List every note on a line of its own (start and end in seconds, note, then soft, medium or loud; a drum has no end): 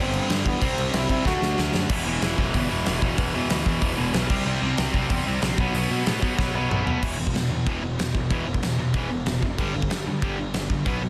0.00 0.19 G1 loud
0.00 0.60 G2 loud
0.00 0.59 D3 loud
0.00 0.60 G3 loud
0.00 0.30 C4 medium
0.13 crash medium
0.30 0.40 G2 medium
0.30 snare loud
0.30 crash medium
0.46 0.56 E2 loud
0.46 0.66 B3 medium
0.46 kick medium
0.46 crash medium
0.60 0.72 C2 medium
0.60 1.24 C3 medium
0.60 1.25 G3 loud
0.60 1.25 C4 loud
0.60 kick loud
0.60 crash loud
0.64 0.95 C4 medium
0.78 0.88 C2 loud
0.78 crash medium
0.93 1.04 C2 loud
0.93 1.09 E4 loud
0.93 snare loud
0.93 crash medium
1.09 1.20 C3 loud
1.09 1.25 E4 loud
1.09 kick medium
1.09 crash medium
1.25 1.36 D2 loud
1.25 1.89 D3 loud
1.25 1.89 A3 loud
1.25 1.90 D4 loud
1.25 1.71 F#4 loud
1.25 kick loud
1.25 snare medium
1.42 1.52 D2 loud
1.42 snare medium
1.58 1.69 D2 medium
1.58 snare loud
1.74 1.85 F#2 medium
1.74 snare loud
1.89 2.01 E1 loud
1.89 2.06 E2 medium
1.89 2.05 B2 loud
1.89 2.05 E3 loud
1.89 kick loud
1.89 crash loud
2.06 2.17 E1 medium
2.06 2.21 E2 medium
2.06 2.20 B2 loud
2.06 2.22 E3 loud
2.21 2.33 E1 medium
2.21 2.37 E2 medium
2.21 2.37 B2 loud
2.21 2.38 E3 loud
2.21 snare loud
2.21 open hi-hat medium
2.38 2.49 E1 loud
2.38 2.52 E2 medium
2.38 2.52 B2 medium
2.38 2.54 E3 loud
2.38 kick medium
2.53 2.65 G1 loud
2.53 2.70 E2 loud
2.53 2.69 B2 loud
2.53 2.69 E3 loud
2.53 kick loud
2.53 open hi-hat medium
2.69 2.82 E1 medium
2.69 2.84 E2 medium
2.69 2.84 B2 medium
2.69 2.86 E3 loud
2.85 2.98 E1 medium
2.85 3.02 E2 medium
2.85 3.02 B2 medium
2.85 3.02 E3 medium
2.85 snare loud
2.85 open hi-hat medium
3.02 3.13 E1 loud
3.02 3.16 E2 medium
3.02 3.17 B2 medium
3.02 3.18 E3 loud
3.02 kick medium
3.18 3.29 E1 loud
3.18 3.34 E2 medium
3.18 3.34 B2 medium
3.18 3.34 E3 loud
3.18 kick loud
3.18 open hi-hat medium
3.34 3.46 E2 loud
3.34 3.49 E2 medium
3.34 3.49 B2 medium
3.34 3.50 E3 medium
3.50 3.62 D2 loud
3.50 3.66 E2 medium
3.50 3.66 B2 medium
3.50 3.65 E3 loud
3.50 snare loud
3.50 open hi-hat medium
3.66 3.77 E2 loud
3.66 3.80 E2 medium
3.66 3.80 B2 medium
3.66 3.81 E3 loud
3.66 kick medium
3.81 3.93 E1 medium
3.81 3.97 E2 medium
3.81 3.97 B2 loud
3.81 3.96 E3 loud
3.81 kick loud
3.81 open hi-hat medium
3.97 4.09 E1 loud
3.97 4.12 E2 medium
3.97 4.13 B2 medium
3.97 4.13 E3 medium
4.13 4.25 B1 medium
4.13 4.29 E2 medium
4.13 4.29 B2 medium
4.13 4.29 E3 medium
4.13 snare loud
4.13 open hi-hat medium
4.29 4.41 C2 medium
4.29 4.45 C3 medium
4.29 4.45 G3 loud
4.29 4.44 C4 loud
4.29 kick loud
4.29 crash loud
4.46 4.57 C2 loud
4.46 4.60 C3 medium
4.46 4.60 G3 loud
4.46 4.61 C4 loud
4.61 4.73 C2 loud
4.61 4.78 C3 medium
4.61 4.78 G3 medium
4.61 4.77 C4 medium
4.78 4.89 C2 medium
4.78 4.93 C3 medium
4.78 4.93 G3 medium
4.78 4.94 C4 loud
4.78 snare loud
4.78 open hi-hat medium
4.94 5.05 C2 loud
4.94 5.10 C3 medium
4.94 5.10 G3 medium
4.94 5.09 C4 loud
4.94 kick medium
5.10 5.21 E2 medium
5.10 5.25 C3 medium
5.10 5.25 G3 medium
5.10 5.26 C4 loud
5.10 kick loud
5.10 open hi-hat medium
5.26 5.37 C2 medium
5.26 5.42 C3 medium
5.26 5.42 G3 medium
5.26 5.42 C4 medium
5.42 5.53 A#1 loud
5.42 5.58 C3 medium
5.42 5.58 G3 medium
5.42 5.58 C4 medium
5.42 snare loud
5.42 open hi-hat medium
5.58 5.69 B1 loud
5.58 5.75 B2 medium
5.58 5.74 F#3 loud
5.58 5.74 B3 loud
5.58 kick loud
5.74 5.85 B1 loud
5.74 5.90 B2 medium
5.74 5.90 F#3 medium
5.74 5.91 B3 loud
5.74 open hi-hat medium
5.90 6.01 B2 loud
5.90 6.07 B2 medium
5.90 6.06 F#3 medium
5.90 6.06 B3 loud
6.06 6.18 A2 medium
6.06 6.21 B2 medium
6.06 6.22 F#3 medium
6.06 6.22 B3 loud
6.06 snare loud
6.06 open hi-hat medium
6.22 6.37 B2 medium
6.22 6.33 B2 medium
6.22 6.37 F#3 medium
6.22 6.37 B3 loud
6.22 kick medium
6.38 6.49 B1 loud
6.38 6.54 B2 medium
6.38 6.54 F#3 loud
6.38 6.54 B3 loud
6.38 kick loud
6.38 snare medium
6.55 6.66 B1 loud
6.55 6.69 B2 medium
6.55 6.69 F#3 medium
6.55 6.69 B3 medium
6.70 6.82 B1 medium
6.70 6.84 B2 medium
6.70 6.85 F#3 medium
6.70 6.85 B3 loud
6.70 mid tom medium
6.85 7.01 B2 medium
6.85 6.97 B2 medium
6.85 7.01 F#3 medium
6.85 7.01 B3 loud
6.85 floor tom loud
7.02 7.18 E1 medium
7.02 7.16 E2 medium
7.02 7.17 B2 loud
7.02 7.18 E3 loud
7.02 kick loud
7.02 crash loud
7.02 crash medium
7.17 7.34 E1 medium
7.17 7.32 E2 medium
7.17 7.33 B2 medium
7.27 kick medium
7.34 7.50 E1 medium
7.34 7.49 E2 medium
7.34 7.49 B2 medium
7.34 snare loud
7.34 crash medium
7.50 7.65 E2 medium
7.50 7.66 E2 medium
7.50 7.65 B2 medium
7.66 7.97 E1 loud
7.66 7.81 E2 loud
7.66 7.81 B2 loud
7.66 7.82 E3 loud
7.66 kick loud
7.66 crash medium
7.82 7.97 E2 medium
7.82 7.97 B2 medium
7.98 8.14 E1 medium
7.98 8.13 E2 medium
7.98 8.13 B2 medium
7.98 snare loud
7.98 crash medium
8.14 8.30 E1 medium
8.14 8.29 E2 medium
8.14 8.29 B2 medium
8.14 kick medium
8.30 8.46 E1 loud
8.30 8.45 E2 medium
8.30 8.45 B2 medium
8.30 8.46 E3 loud
8.30 kick loud
8.30 crash medium
8.46 8.62 E1 loud
8.46 8.61 E2 medium
8.46 8.61 B2 medium
8.54 kick medium
8.63 8.78 E1 loud
8.63 8.78 E2 medium
8.63 8.77 B2 medium
8.63 snare loud
8.63 crash medium
8.79 8.93 E2 loud
8.79 8.93 E2 medium
8.79 8.94 B2 medium
8.94 9.24 E1 loud
8.94 9.09 E2 medium
8.94 9.09 B2 loud
8.94 9.10 E3 loud
8.94 kick loud
8.94 crash medium
9.10 9.25 E2 medium
9.10 9.25 B2 medium
9.26 9.42 E1 medium
9.26 9.41 E2 medium
9.26 9.41 B2 medium
9.26 snare loud
9.26 crash medium
9.42 9.58 F#1 medium
9.42 9.57 E2 medium
9.42 9.57 B2 medium
9.42 kick medium
9.58 9.74 G1 loud
9.58 9.73 G2 medium
9.58 9.73 D3 loud
9.58 9.74 G3 loud
9.58 kick loud
9.58 crash medium
9.74 9.90 G1 medium
9.74 9.89 G2 medium
9.74 9.89 D3 medium
9.82 kick medium
9.90 10.06 G1 medium
9.90 10.05 G2 medium
9.90 10.05 D3 medium
9.90 snare loud
9.90 crash medium
10.07 10.21 G2 medium
10.07 10.22 G2 loud
10.07 10.21 D3 medium
10.22 10.53 G1 medium
10.22 10.37 G2 loud
10.22 10.38 D3 loud
10.22 10.38 G3 loud
10.22 kick loud
10.22 crash medium
10.38 10.53 G2 medium
10.38 10.53 D3 medium
10.54 10.69 G1 medium
10.54 10.69 G2 medium
10.54 10.69 D3 medium
10.54 snare loud
10.54 crash medium
10.70 10.86 G1 medium
10.70 10.85 G2 medium
10.70 10.85 D3 medium
10.70 kick medium
10.86 11.02 B1 medium
10.86 11.00 B2 loud
10.86 11.00 F#3 medium
10.86 11.02 B3 loud
10.86 kick loud
10.86 crash medium
11.01 11.09 B1 medium
11.01 11.09 B2 medium
11.01 11.09 F#3 medium